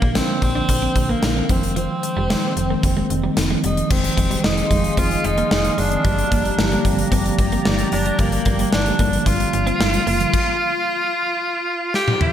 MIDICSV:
0, 0, Header, 1, 8, 480
1, 0, Start_track
1, 0, Tempo, 535714
1, 1580, Time_signature, 4, 2, 24, 8
1, 11044, End_track
2, 0, Start_track
2, 0, Title_t, "Analog synth pad"
2, 0, Program_c, 0, 89
2, 3496, Note_on_c, 0, 68, 77
2, 3496, Note_on_c, 0, 75, 73
2, 3497, Note_on_c, 0, 77, 73
2, 3497, Note_on_c, 0, 84, 83
2, 5399, Note_off_c, 0, 68, 0
2, 5399, Note_off_c, 0, 75, 0
2, 5399, Note_off_c, 0, 84, 0
2, 5419, Note_on_c, 0, 82, 86
2, 5420, Note_on_c, 0, 67, 76
2, 5423, Note_on_c, 0, 74, 72
2, 9223, Note_off_c, 0, 77, 0
2, 9224, Note_off_c, 0, 67, 0
2, 9224, Note_off_c, 0, 82, 0
2, 9226, Note_off_c, 0, 74, 0
2, 11044, End_track
3, 0, Start_track
3, 0, Title_t, "Tenor saxophone"
3, 0, Program_c, 1, 66
3, 0, Note_on_c, 1, 58, 93
3, 147, Note_on_c, 1, 60, 92
3, 160, Note_off_c, 1, 58, 0
3, 383, Note_off_c, 1, 60, 0
3, 388, Note_on_c, 1, 60, 109
3, 988, Note_on_c, 1, 58, 90
3, 1001, Note_off_c, 1, 60, 0
3, 1350, Note_on_c, 1, 60, 85
3, 1363, Note_off_c, 1, 58, 0
3, 1581, Note_off_c, 1, 60, 0
3, 1586, Note_on_c, 1, 60, 92
3, 2987, Note_off_c, 1, 60, 0
3, 3275, Note_on_c, 1, 63, 76
3, 3506, Note_on_c, 1, 60, 86
3, 3519, Note_off_c, 1, 63, 0
3, 3981, Note_on_c, 1, 63, 93
3, 3995, Note_off_c, 1, 60, 0
3, 4463, Note_on_c, 1, 65, 108
3, 4477, Note_off_c, 1, 63, 0
3, 4707, Note_on_c, 1, 63, 95
3, 4720, Note_off_c, 1, 65, 0
3, 4938, Note_off_c, 1, 63, 0
3, 4943, Note_on_c, 1, 63, 93
3, 5186, Note_on_c, 1, 62, 94
3, 5199, Note_off_c, 1, 63, 0
3, 6623, Note_off_c, 1, 62, 0
3, 7105, Note_on_c, 1, 62, 86
3, 7341, Note_on_c, 1, 58, 90
3, 7355, Note_off_c, 1, 62, 0
3, 7811, Note_off_c, 1, 58, 0
3, 7816, Note_on_c, 1, 62, 96
3, 8298, Note_on_c, 1, 65, 109
3, 8311, Note_off_c, 1, 62, 0
3, 10699, Note_off_c, 1, 65, 0
3, 10709, Note_on_c, 1, 67, 109
3, 10928, Note_off_c, 1, 67, 0
3, 10946, Note_on_c, 1, 65, 112
3, 11044, Note_off_c, 1, 65, 0
3, 11044, End_track
4, 0, Start_track
4, 0, Title_t, "Clean electric guitar"
4, 0, Program_c, 2, 27
4, 16, Note_on_c, 2, 58, 75
4, 116, Note_off_c, 2, 58, 0
4, 136, Note_on_c, 2, 60, 82
4, 236, Note_off_c, 2, 60, 0
4, 496, Note_on_c, 2, 62, 78
4, 596, Note_off_c, 2, 62, 0
4, 737, Note_on_c, 2, 60, 74
4, 837, Note_off_c, 2, 60, 0
4, 979, Note_on_c, 2, 58, 71
4, 1078, Note_off_c, 2, 58, 0
4, 1221, Note_on_c, 2, 60, 67
4, 1319, Note_off_c, 2, 60, 0
4, 1340, Note_on_c, 2, 60, 73
4, 1438, Note_off_c, 2, 60, 0
4, 1579, Note_on_c, 2, 53, 76
4, 1677, Note_off_c, 2, 53, 0
4, 1941, Note_on_c, 2, 55, 73
4, 2039, Note_off_c, 2, 55, 0
4, 2061, Note_on_c, 2, 56, 80
4, 2158, Note_off_c, 2, 56, 0
4, 2423, Note_on_c, 2, 58, 57
4, 2520, Note_off_c, 2, 58, 0
4, 2658, Note_on_c, 2, 56, 65
4, 2757, Note_off_c, 2, 56, 0
4, 2899, Note_on_c, 2, 55, 67
4, 2997, Note_off_c, 2, 55, 0
4, 3141, Note_on_c, 2, 56, 62
4, 3239, Note_off_c, 2, 56, 0
4, 3262, Note_on_c, 2, 55, 72
4, 3359, Note_off_c, 2, 55, 0
4, 3736, Note_on_c, 2, 56, 75
4, 3836, Note_off_c, 2, 56, 0
4, 3858, Note_on_c, 2, 55, 64
4, 3957, Note_off_c, 2, 55, 0
4, 4219, Note_on_c, 2, 56, 73
4, 4317, Note_off_c, 2, 56, 0
4, 4458, Note_on_c, 2, 60, 79
4, 4557, Note_off_c, 2, 60, 0
4, 4819, Note_on_c, 2, 58, 78
4, 4917, Note_off_c, 2, 58, 0
4, 5178, Note_on_c, 2, 56, 73
4, 5277, Note_off_c, 2, 56, 0
4, 5418, Note_on_c, 2, 55, 83
4, 5517, Note_off_c, 2, 55, 0
4, 5660, Note_on_c, 2, 58, 70
4, 5758, Note_off_c, 2, 58, 0
4, 6023, Note_on_c, 2, 58, 72
4, 6120, Note_off_c, 2, 58, 0
4, 6141, Note_on_c, 2, 55, 65
4, 6239, Note_off_c, 2, 55, 0
4, 6382, Note_on_c, 2, 60, 83
4, 6479, Note_off_c, 2, 60, 0
4, 6742, Note_on_c, 2, 58, 75
4, 6840, Note_off_c, 2, 58, 0
4, 7104, Note_on_c, 2, 55, 77
4, 7200, Note_off_c, 2, 55, 0
4, 7223, Note_on_c, 2, 55, 70
4, 7320, Note_off_c, 2, 55, 0
4, 7584, Note_on_c, 2, 58, 79
4, 7681, Note_off_c, 2, 58, 0
4, 7704, Note_on_c, 2, 55, 70
4, 7800, Note_off_c, 2, 55, 0
4, 8065, Note_on_c, 2, 58, 79
4, 8161, Note_off_c, 2, 58, 0
4, 8305, Note_on_c, 2, 62, 79
4, 8401, Note_off_c, 2, 62, 0
4, 8661, Note_on_c, 2, 60, 79
4, 8758, Note_off_c, 2, 60, 0
4, 9021, Note_on_c, 2, 58, 83
4, 9119, Note_off_c, 2, 58, 0
4, 11044, End_track
5, 0, Start_track
5, 0, Title_t, "Tine electric piano"
5, 0, Program_c, 3, 4
5, 0, Control_c, 3, 64, 127
5, 0, Note_on_c, 3, 50, 76
5, 0, Note_on_c, 3, 53, 68
5, 0, Note_on_c, 3, 58, 68
5, 0, Note_on_c, 3, 62, 83
5, 133, Note_off_c, 3, 50, 0
5, 133, Note_on_c, 3, 50, 73
5, 135, Note_off_c, 3, 53, 0
5, 135, Note_on_c, 3, 53, 63
5, 139, Note_off_c, 3, 58, 0
5, 139, Note_on_c, 3, 58, 62
5, 142, Note_off_c, 3, 62, 0
5, 142, Note_on_c, 3, 62, 76
5, 375, Note_off_c, 3, 50, 0
5, 376, Note_off_c, 3, 53, 0
5, 378, Note_off_c, 3, 58, 0
5, 380, Note_off_c, 3, 62, 0
5, 492, Note_on_c, 3, 50, 71
5, 495, Note_on_c, 3, 53, 62
5, 499, Note_on_c, 3, 58, 62
5, 503, Note_on_c, 3, 62, 75
5, 735, Note_off_c, 3, 50, 0
5, 736, Note_off_c, 3, 53, 0
5, 738, Note_off_c, 3, 58, 0
5, 740, Note_off_c, 3, 62, 0
5, 857, Note_on_c, 3, 50, 65
5, 860, Note_on_c, 3, 53, 56
5, 863, Note_on_c, 3, 58, 60
5, 866, Note_on_c, 3, 62, 74
5, 1097, Note_off_c, 3, 50, 0
5, 1099, Note_off_c, 3, 53, 0
5, 1100, Note_off_c, 3, 58, 0
5, 1102, Note_off_c, 3, 62, 0
5, 1218, Note_on_c, 3, 50, 66
5, 1221, Note_on_c, 3, 53, 57
5, 1226, Note_on_c, 3, 58, 57
5, 1229, Note_on_c, 3, 62, 70
5, 1329, Note_off_c, 3, 53, 0
5, 1336, Note_on_c, 3, 51, 74
5, 1339, Note_off_c, 3, 50, 0
5, 1340, Note_on_c, 3, 53, 70
5, 1343, Note_off_c, 3, 58, 0
5, 1343, Note_on_c, 3, 56, 68
5, 1345, Note_off_c, 3, 62, 0
5, 1346, Note_on_c, 3, 60, 80
5, 1352, Control_c, 3, 64, 0
5, 1533, Control_c, 3, 64, 127
5, 1914, Note_off_c, 3, 51, 0
5, 1916, Note_off_c, 3, 53, 0
5, 1917, Note_off_c, 3, 56, 0
5, 1919, Note_off_c, 3, 60, 0
5, 2056, Note_on_c, 3, 51, 68
5, 2060, Note_on_c, 3, 53, 64
5, 2063, Note_on_c, 3, 56, 59
5, 2066, Note_on_c, 3, 60, 71
5, 2297, Note_off_c, 3, 51, 0
5, 2299, Note_off_c, 3, 53, 0
5, 2300, Note_off_c, 3, 56, 0
5, 2302, Note_off_c, 3, 60, 0
5, 2418, Note_on_c, 3, 51, 85
5, 2420, Note_on_c, 3, 53, 72
5, 2425, Note_on_c, 3, 56, 75
5, 2426, Note_on_c, 3, 58, 90
5, 2658, Note_off_c, 3, 51, 0
5, 2659, Note_off_c, 3, 53, 0
5, 2662, Note_off_c, 3, 56, 0
5, 2662, Note_off_c, 3, 58, 0
5, 2774, Note_on_c, 3, 51, 78
5, 2778, Note_on_c, 3, 53, 67
5, 2782, Note_on_c, 3, 56, 68
5, 2784, Note_on_c, 3, 60, 80
5, 3016, Note_off_c, 3, 51, 0
5, 3018, Note_off_c, 3, 53, 0
5, 3020, Note_off_c, 3, 56, 0
5, 3021, Note_off_c, 3, 60, 0
5, 3132, Note_on_c, 3, 51, 78
5, 3136, Note_on_c, 3, 53, 68
5, 3141, Note_on_c, 3, 56, 67
5, 3144, Note_on_c, 3, 60, 84
5, 3375, Note_off_c, 3, 51, 0
5, 3377, Note_off_c, 3, 53, 0
5, 3379, Note_off_c, 3, 56, 0
5, 3381, Note_off_c, 3, 60, 0
5, 3493, Note_on_c, 3, 51, 67
5, 3497, Note_on_c, 3, 53, 62
5, 3501, Note_on_c, 3, 56, 61
5, 3503, Note_on_c, 3, 60, 72
5, 3510, Control_c, 3, 64, 0
5, 3671, Control_c, 3, 64, 127
5, 3974, Note_off_c, 3, 51, 0
5, 3976, Note_off_c, 3, 53, 0
5, 3978, Note_off_c, 3, 56, 0
5, 3979, Note_off_c, 3, 60, 0
5, 4210, Note_on_c, 3, 51, 71
5, 4212, Note_on_c, 3, 53, 65
5, 4217, Note_on_c, 3, 55, 51
5, 4222, Note_on_c, 3, 63, 81
5, 4275, Note_on_c, 3, 56, 66
5, 4276, Note_off_c, 3, 55, 0
5, 4852, Note_off_c, 3, 51, 0
5, 4853, Note_off_c, 3, 53, 0
5, 4858, Note_off_c, 3, 63, 0
5, 4884, Note_off_c, 3, 56, 0
5, 5289, Note_on_c, 3, 51, 69
5, 5292, Note_on_c, 3, 53, 62
5, 5296, Note_on_c, 3, 56, 61
5, 5300, Note_on_c, 3, 60, 76
5, 5374, Note_off_c, 3, 51, 0
5, 5376, Note_off_c, 3, 53, 0
5, 5378, Note_off_c, 3, 56, 0
5, 5380, Note_off_c, 3, 60, 0
5, 5407, Note_on_c, 3, 50, 65
5, 5431, Control_c, 3, 64, 0
5, 5579, Control_c, 3, 64, 127
5, 5732, Note_off_c, 3, 50, 0
5, 5894, Note_on_c, 3, 50, 86
5, 5896, Note_on_c, 3, 53, 77
5, 5901, Note_on_c, 3, 55, 76
5, 5903, Note_on_c, 3, 58, 96
5, 6056, Note_off_c, 3, 50, 0
5, 6057, Note_off_c, 3, 53, 0
5, 6060, Note_off_c, 3, 55, 0
5, 6061, Note_off_c, 3, 58, 0
5, 6132, Note_on_c, 3, 50, 87
5, 6136, Note_on_c, 3, 53, 79
5, 6140, Note_on_c, 3, 55, 83
5, 6144, Note_on_c, 3, 60, 97
5, 6773, Note_off_c, 3, 50, 0
5, 6775, Note_off_c, 3, 53, 0
5, 6777, Note_off_c, 3, 55, 0
5, 6779, Note_off_c, 3, 60, 0
5, 7337, Note_on_c, 3, 50, 72
5, 7340, Note_on_c, 3, 53, 66
5, 7343, Note_on_c, 3, 55, 65
5, 7348, Note_on_c, 3, 58, 78
5, 7816, Note_off_c, 3, 50, 0
5, 7818, Note_off_c, 3, 53, 0
5, 7819, Note_off_c, 3, 55, 0
5, 7822, Note_off_c, 3, 58, 0
5, 8054, Note_on_c, 3, 50, 76
5, 8060, Note_on_c, 3, 53, 71
5, 8063, Note_on_c, 3, 55, 71
5, 8065, Note_on_c, 3, 58, 83
5, 8694, Note_off_c, 3, 50, 0
5, 8697, Note_off_c, 3, 53, 0
5, 8699, Note_off_c, 3, 55, 0
5, 8700, Note_off_c, 3, 58, 0
5, 9134, Note_on_c, 3, 50, 88
5, 9138, Note_on_c, 3, 53, 76
5, 9141, Note_on_c, 3, 55, 78
5, 9144, Note_on_c, 3, 58, 93
5, 9217, Note_off_c, 3, 50, 0
5, 9219, Note_off_c, 3, 53, 0
5, 9220, Note_off_c, 3, 55, 0
5, 9222, Note_off_c, 3, 58, 0
5, 9273, Control_c, 3, 64, 0
5, 11044, End_track
6, 0, Start_track
6, 0, Title_t, "FM bass"
6, 0, Program_c, 4, 39
6, 19, Note_on_c, 4, 34, 103
6, 192, Note_off_c, 4, 34, 0
6, 378, Note_on_c, 4, 34, 105
6, 551, Note_off_c, 4, 34, 0
6, 616, Note_on_c, 4, 34, 105
6, 790, Note_off_c, 4, 34, 0
6, 857, Note_on_c, 4, 34, 99
6, 1031, Note_off_c, 4, 34, 0
6, 1099, Note_on_c, 4, 34, 100
6, 1272, Note_off_c, 4, 34, 0
6, 1340, Note_on_c, 4, 29, 98
6, 1686, Note_off_c, 4, 29, 0
6, 1940, Note_on_c, 4, 29, 102
6, 2113, Note_off_c, 4, 29, 0
6, 2299, Note_on_c, 4, 29, 96
6, 2472, Note_off_c, 4, 29, 0
6, 2539, Note_on_c, 4, 29, 102
6, 2712, Note_off_c, 4, 29, 0
6, 2779, Note_on_c, 4, 29, 95
6, 2952, Note_off_c, 4, 29, 0
6, 3017, Note_on_c, 4, 29, 100
6, 3191, Note_off_c, 4, 29, 0
6, 3259, Note_on_c, 4, 29, 96
6, 3432, Note_off_c, 4, 29, 0
6, 3501, Note_on_c, 4, 29, 100
6, 3673, Note_off_c, 4, 29, 0
6, 3741, Note_on_c, 4, 29, 90
6, 3913, Note_off_c, 4, 29, 0
6, 3980, Note_on_c, 4, 29, 96
6, 4153, Note_off_c, 4, 29, 0
6, 4216, Note_on_c, 4, 29, 98
6, 4390, Note_off_c, 4, 29, 0
6, 4457, Note_on_c, 4, 29, 95
6, 4631, Note_off_c, 4, 29, 0
6, 4698, Note_on_c, 4, 29, 94
6, 4872, Note_off_c, 4, 29, 0
6, 4939, Note_on_c, 4, 29, 104
6, 5112, Note_off_c, 4, 29, 0
6, 5178, Note_on_c, 4, 30, 93
6, 5351, Note_off_c, 4, 30, 0
6, 5419, Note_on_c, 4, 31, 98
6, 5592, Note_off_c, 4, 31, 0
6, 5660, Note_on_c, 4, 31, 81
6, 5833, Note_off_c, 4, 31, 0
6, 5896, Note_on_c, 4, 31, 97
6, 6070, Note_off_c, 4, 31, 0
6, 6137, Note_on_c, 4, 31, 96
6, 6311, Note_off_c, 4, 31, 0
6, 6377, Note_on_c, 4, 31, 109
6, 6551, Note_off_c, 4, 31, 0
6, 6617, Note_on_c, 4, 31, 99
6, 6791, Note_off_c, 4, 31, 0
6, 6860, Note_on_c, 4, 31, 109
6, 7033, Note_off_c, 4, 31, 0
6, 7099, Note_on_c, 4, 30, 92
6, 7272, Note_off_c, 4, 30, 0
6, 7337, Note_on_c, 4, 31, 103
6, 7511, Note_off_c, 4, 31, 0
6, 7580, Note_on_c, 4, 31, 92
6, 7753, Note_off_c, 4, 31, 0
6, 7821, Note_on_c, 4, 31, 96
6, 7993, Note_off_c, 4, 31, 0
6, 8057, Note_on_c, 4, 31, 104
6, 8231, Note_off_c, 4, 31, 0
6, 8298, Note_on_c, 4, 31, 103
6, 8471, Note_off_c, 4, 31, 0
6, 8542, Note_on_c, 4, 31, 99
6, 8714, Note_off_c, 4, 31, 0
6, 8779, Note_on_c, 4, 31, 108
6, 8952, Note_off_c, 4, 31, 0
6, 9019, Note_on_c, 4, 30, 94
6, 9192, Note_off_c, 4, 30, 0
6, 11044, End_track
7, 0, Start_track
7, 0, Title_t, "Muted clean electric guitar strokes"
7, 377, Note_on_c, 9, 29, 42
7, 467, Note_off_c, 9, 29, 0
7, 860, Note_on_c, 9, 29, 41
7, 950, Note_off_c, 9, 29, 0
7, 1100, Note_on_c, 9, 29, 40
7, 1190, Note_off_c, 9, 29, 0
7, 1821, Note_on_c, 9, 29, 42
7, 1910, Note_off_c, 9, 29, 0
7, 2302, Note_on_c, 9, 29, 41
7, 2391, Note_off_c, 9, 29, 0
7, 2779, Note_on_c, 9, 29, 38
7, 2869, Note_off_c, 9, 29, 0
7, 3021, Note_on_c, 9, 29, 39
7, 3110, Note_off_c, 9, 29, 0
7, 3617, Note_on_c, 9, 29, 42
7, 3706, Note_off_c, 9, 29, 0
7, 4697, Note_on_c, 9, 29, 40
7, 4786, Note_off_c, 9, 29, 0
7, 5536, Note_on_c, 9, 29, 41
7, 5626, Note_off_c, 9, 29, 0
7, 5901, Note_on_c, 9, 29, 45
7, 5991, Note_off_c, 9, 29, 0
7, 6623, Note_on_c, 9, 29, 44
7, 6712, Note_off_c, 9, 29, 0
7, 6863, Note_on_c, 9, 29, 42
7, 6953, Note_off_c, 9, 29, 0
7, 7464, Note_on_c, 9, 29, 43
7, 7553, Note_off_c, 9, 29, 0
7, 8544, Note_on_c, 9, 29, 46
7, 8634, Note_off_c, 9, 29, 0
7, 11044, End_track
8, 0, Start_track
8, 0, Title_t, "Drums"
8, 19, Note_on_c, 9, 36, 80
8, 108, Note_off_c, 9, 36, 0
8, 136, Note_on_c, 9, 42, 80
8, 137, Note_on_c, 9, 38, 113
8, 226, Note_off_c, 9, 42, 0
8, 227, Note_off_c, 9, 38, 0
8, 377, Note_on_c, 9, 36, 79
8, 377, Note_on_c, 9, 42, 72
8, 466, Note_off_c, 9, 36, 0
8, 467, Note_off_c, 9, 42, 0
8, 616, Note_on_c, 9, 36, 81
8, 616, Note_on_c, 9, 42, 89
8, 706, Note_off_c, 9, 36, 0
8, 706, Note_off_c, 9, 42, 0
8, 857, Note_on_c, 9, 36, 85
8, 857, Note_on_c, 9, 42, 64
8, 946, Note_off_c, 9, 36, 0
8, 947, Note_off_c, 9, 42, 0
8, 1098, Note_on_c, 9, 38, 107
8, 1098, Note_on_c, 9, 42, 78
8, 1188, Note_off_c, 9, 38, 0
8, 1188, Note_off_c, 9, 42, 0
8, 1339, Note_on_c, 9, 36, 93
8, 1339, Note_on_c, 9, 42, 62
8, 1428, Note_off_c, 9, 36, 0
8, 1428, Note_off_c, 9, 42, 0
8, 1462, Note_on_c, 9, 42, 47
8, 1552, Note_off_c, 9, 42, 0
8, 1581, Note_on_c, 9, 42, 68
8, 1671, Note_off_c, 9, 42, 0
8, 1821, Note_on_c, 9, 42, 65
8, 1910, Note_off_c, 9, 42, 0
8, 2063, Note_on_c, 9, 42, 77
8, 2064, Note_on_c, 9, 38, 115
8, 2153, Note_off_c, 9, 42, 0
8, 2154, Note_off_c, 9, 38, 0
8, 2301, Note_on_c, 9, 42, 68
8, 2390, Note_off_c, 9, 42, 0
8, 2539, Note_on_c, 9, 36, 81
8, 2540, Note_on_c, 9, 42, 82
8, 2628, Note_off_c, 9, 36, 0
8, 2629, Note_off_c, 9, 42, 0
8, 2781, Note_on_c, 9, 42, 63
8, 2870, Note_off_c, 9, 42, 0
8, 3018, Note_on_c, 9, 38, 100
8, 3018, Note_on_c, 9, 42, 81
8, 3108, Note_off_c, 9, 38, 0
8, 3108, Note_off_c, 9, 42, 0
8, 3258, Note_on_c, 9, 42, 64
8, 3348, Note_off_c, 9, 42, 0
8, 3381, Note_on_c, 9, 42, 51
8, 3471, Note_off_c, 9, 42, 0
8, 3499, Note_on_c, 9, 36, 96
8, 3499, Note_on_c, 9, 49, 87
8, 3588, Note_off_c, 9, 49, 0
8, 3589, Note_off_c, 9, 36, 0
8, 3622, Note_on_c, 9, 42, 53
8, 3712, Note_off_c, 9, 42, 0
8, 3741, Note_on_c, 9, 36, 84
8, 3741, Note_on_c, 9, 42, 69
8, 3830, Note_off_c, 9, 36, 0
8, 3830, Note_off_c, 9, 42, 0
8, 3861, Note_on_c, 9, 42, 53
8, 3951, Note_off_c, 9, 42, 0
8, 3981, Note_on_c, 9, 38, 115
8, 4070, Note_off_c, 9, 38, 0
8, 4098, Note_on_c, 9, 42, 46
8, 4187, Note_off_c, 9, 42, 0
8, 4217, Note_on_c, 9, 36, 79
8, 4217, Note_on_c, 9, 42, 68
8, 4307, Note_off_c, 9, 36, 0
8, 4307, Note_off_c, 9, 42, 0
8, 4339, Note_on_c, 9, 42, 56
8, 4428, Note_off_c, 9, 42, 0
8, 4456, Note_on_c, 9, 36, 82
8, 4457, Note_on_c, 9, 42, 80
8, 4546, Note_off_c, 9, 36, 0
8, 4547, Note_off_c, 9, 42, 0
8, 4580, Note_on_c, 9, 42, 47
8, 4670, Note_off_c, 9, 42, 0
8, 4699, Note_on_c, 9, 42, 69
8, 4789, Note_off_c, 9, 42, 0
8, 4816, Note_on_c, 9, 42, 43
8, 4906, Note_off_c, 9, 42, 0
8, 4939, Note_on_c, 9, 38, 107
8, 5029, Note_off_c, 9, 38, 0
8, 5057, Note_on_c, 9, 42, 49
8, 5147, Note_off_c, 9, 42, 0
8, 5180, Note_on_c, 9, 46, 69
8, 5269, Note_off_c, 9, 46, 0
8, 5301, Note_on_c, 9, 42, 52
8, 5391, Note_off_c, 9, 42, 0
8, 5417, Note_on_c, 9, 42, 72
8, 5418, Note_on_c, 9, 36, 103
8, 5507, Note_off_c, 9, 36, 0
8, 5507, Note_off_c, 9, 42, 0
8, 5542, Note_on_c, 9, 42, 52
8, 5631, Note_off_c, 9, 42, 0
8, 5660, Note_on_c, 9, 36, 85
8, 5660, Note_on_c, 9, 42, 64
8, 5749, Note_off_c, 9, 42, 0
8, 5750, Note_off_c, 9, 36, 0
8, 5781, Note_on_c, 9, 42, 53
8, 5870, Note_off_c, 9, 42, 0
8, 5901, Note_on_c, 9, 38, 110
8, 5991, Note_off_c, 9, 38, 0
8, 6019, Note_on_c, 9, 42, 46
8, 6108, Note_off_c, 9, 42, 0
8, 6136, Note_on_c, 9, 36, 78
8, 6137, Note_on_c, 9, 42, 68
8, 6226, Note_off_c, 9, 36, 0
8, 6227, Note_off_c, 9, 42, 0
8, 6259, Note_on_c, 9, 42, 56
8, 6348, Note_off_c, 9, 42, 0
8, 6377, Note_on_c, 9, 36, 86
8, 6378, Note_on_c, 9, 42, 90
8, 6466, Note_off_c, 9, 36, 0
8, 6468, Note_off_c, 9, 42, 0
8, 6501, Note_on_c, 9, 42, 48
8, 6591, Note_off_c, 9, 42, 0
8, 6617, Note_on_c, 9, 36, 90
8, 6618, Note_on_c, 9, 42, 70
8, 6707, Note_off_c, 9, 36, 0
8, 6708, Note_off_c, 9, 42, 0
8, 6737, Note_on_c, 9, 42, 40
8, 6826, Note_off_c, 9, 42, 0
8, 6858, Note_on_c, 9, 38, 108
8, 6948, Note_off_c, 9, 38, 0
8, 6976, Note_on_c, 9, 42, 53
8, 7065, Note_off_c, 9, 42, 0
8, 7095, Note_on_c, 9, 46, 68
8, 7185, Note_off_c, 9, 46, 0
8, 7218, Note_on_c, 9, 42, 50
8, 7308, Note_off_c, 9, 42, 0
8, 7335, Note_on_c, 9, 42, 75
8, 7338, Note_on_c, 9, 36, 99
8, 7425, Note_off_c, 9, 42, 0
8, 7427, Note_off_c, 9, 36, 0
8, 7456, Note_on_c, 9, 42, 52
8, 7545, Note_off_c, 9, 42, 0
8, 7575, Note_on_c, 9, 42, 72
8, 7579, Note_on_c, 9, 36, 91
8, 7664, Note_off_c, 9, 42, 0
8, 7669, Note_off_c, 9, 36, 0
8, 7697, Note_on_c, 9, 42, 53
8, 7787, Note_off_c, 9, 42, 0
8, 7818, Note_on_c, 9, 38, 121
8, 7907, Note_off_c, 9, 38, 0
8, 7938, Note_on_c, 9, 42, 48
8, 8028, Note_off_c, 9, 42, 0
8, 8056, Note_on_c, 9, 42, 70
8, 8057, Note_on_c, 9, 36, 82
8, 8146, Note_off_c, 9, 42, 0
8, 8147, Note_off_c, 9, 36, 0
8, 8182, Note_on_c, 9, 42, 56
8, 8271, Note_off_c, 9, 42, 0
8, 8298, Note_on_c, 9, 36, 89
8, 8298, Note_on_c, 9, 42, 91
8, 8388, Note_off_c, 9, 36, 0
8, 8388, Note_off_c, 9, 42, 0
8, 8423, Note_on_c, 9, 42, 48
8, 8513, Note_off_c, 9, 42, 0
8, 8542, Note_on_c, 9, 42, 71
8, 8632, Note_off_c, 9, 42, 0
8, 8664, Note_on_c, 9, 42, 41
8, 8753, Note_off_c, 9, 42, 0
8, 8786, Note_on_c, 9, 38, 108
8, 8875, Note_off_c, 9, 38, 0
8, 8903, Note_on_c, 9, 42, 52
8, 8993, Note_off_c, 9, 42, 0
8, 9023, Note_on_c, 9, 46, 66
8, 9113, Note_off_c, 9, 46, 0
8, 9144, Note_on_c, 9, 42, 54
8, 9234, Note_off_c, 9, 42, 0
8, 9261, Note_on_c, 9, 36, 106
8, 9262, Note_on_c, 9, 49, 89
8, 9350, Note_off_c, 9, 36, 0
8, 9352, Note_off_c, 9, 49, 0
8, 10699, Note_on_c, 9, 38, 56
8, 10789, Note_off_c, 9, 38, 0
8, 10820, Note_on_c, 9, 48, 67
8, 10910, Note_off_c, 9, 48, 0
8, 10938, Note_on_c, 9, 45, 88
8, 11028, Note_off_c, 9, 45, 0
8, 11044, End_track
0, 0, End_of_file